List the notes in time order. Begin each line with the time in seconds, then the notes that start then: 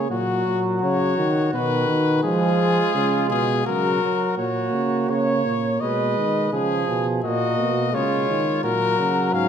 Already playing: G#4
0.10 A#2 F#3 F#4
0.47 A#2
0.82 C#3 C#5
1.18 D#3
1.53 B2 D#3 B4
1.89 D#3
2.23 F3 G#3 F4 G#4
2.95 C#3 G#3
3.30 B2 G#4
3.66 C#3 F#3 F#4 A#4
4.02 F#3
4.37 A#2 A#3 F#4 C#5
4.73 C#3
5.09 C#3 C#5
5.46 A#2
5.81 B2 G#3 B4 D#5
6.17 D#3
6.52 C#3 F3 G#4
6.88 B2
7.24 A#2 A#3 F#4 D#5
7.59 B2
7.93 C#3 G#3 F4 C#5
8.30 D#3
8.64 A#2 F#3 F#4 A#4
8.99 C#3
9.33 G#2 C#4 F5